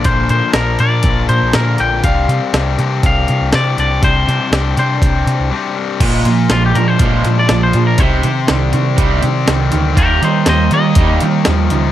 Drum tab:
CC |--------|--------|--------|x-------|
HH |xxxxxxxx|xxxxxxxx|xxxxxx--|xxxxxxxx|
SD |--o---o-|--o---o-|--o-----|--o---o-|
BD |o---o---|o---o---|o---o---|o---o---|

CC |--------|--------|
HH |xxxxxxxx|xxxxxxxx|
SD |--o---o-|--o---o-|
BD |o---o---|o---o---|